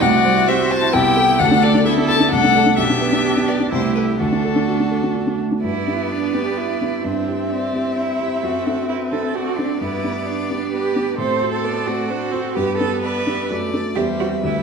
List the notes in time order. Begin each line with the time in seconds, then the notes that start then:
0.01 C2 A3 F#4 D5 F#5
0.13 E4
0.25 G3 C5
0.37 E4
0.48 C4 G4 C5 E5
0.60 E4
0.71 C5 A5
0.82 E4
0.93 C2 B3 E4 G4 G5
1.05 E4
1.17 A4
1.28 E4
1.39 D2 A3 D4 A4 F#5
1.51 D4
1.63 A4 D5
1.74 D4
1.85 B3 E4 A4 E5
1.97 D4
2.08 A4 A5
2.20 D4
2.31 C2 A3 D4 A4 F#5
2.44 D4
2.55 A4
2.66 D4
2.77 B1 B3 D4 G4 E5
2.90 D4
3.01 B4
3.12 D4
3.25 G4
3.37 D4
3.48 B4 D5
3.60 D4
3.71 C2 A3 E4 G4 C5
3.85 E4
3.95 A4 B4
4.08 E4
4.19 D2 A3 D4 F#4 A4
4.32 D4
4.45 A4
4.56 D4
4.68 F#4
4.80 D4
4.91 A4
5.03 D4
5.15 F#4
5.27 D4
5.39 A3
5.52 D4
5.63 G2 B3 E4 B4 D5
5.87 B3 D4 G4
6.11 D4
6.34 B3 D4 G4
6.58 E4
6.81 B3 D4 G4
7.04 G2 C4 D4 C5 E5
7.27 C4 E4 G4
7.50 C4 D5
7.73 C4 E4 G4
7.97 E4 C5
8.20 C4 E4 G4
8.43 F#2 F#4 A4
8.66 C4 D4 A4
8.88 E4 B4
9.12 C4 D4 A4
9.34 F#4 A4 D5
9.58 C4 D4 A4
9.80 G2 B3 E4 B4
10.04 B3 D4 G4
10.26 D4 D5
10.50 B3 D4 G4
10.73 G4 B4
10.96 B3 D4 G4
11.18 A2 C4 A4 C5
11.42 C4 F#4
11.52 A4
11.64 B3 C5 D5
11.87 A3 C4 F#4
12.10 D4 A4 C5
12.32 C4 F#4
12.55 G2 B3 G4 B4
12.78 B3 D4 G4 A4
13.02 B4 D5 E5
13.27 B3 D4 G4
13.49 F#2 A3 D5
13.72 A3 D4 A4
13.95 E2 G3 G4 C5 E5
14.19 G3 C4 F#4 C5
14.43 D2 G3 E4 B4